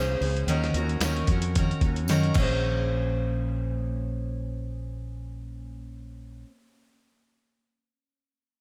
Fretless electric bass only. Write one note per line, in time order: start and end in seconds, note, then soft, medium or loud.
0.00 0.16 C2 medium
0.21 0.43 C#2 medium
0.47 0.69 D#2 loud
0.74 0.96 D#2 loud
1.00 1.23 D#2 medium
1.28 1.71 F2 medium
1.81 2.08 D#2 medium
2.08 2.30 F#2 loud
2.35 6.43 A#1 medium